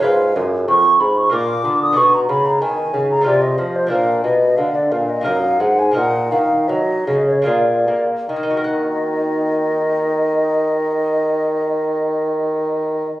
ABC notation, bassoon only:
X:1
M:3/4
L:1/8
Q:1/4=84
K:Ebm
V:1 name="Bassoon" clef=bass
A,, G,, F,, A,, B,, =D, | =B,, D, ^D, _D, =C, F, | B,, C, =D, B,, G,, A,, | B,, E, G, D, B,, B, |
E,6- | E,6 |]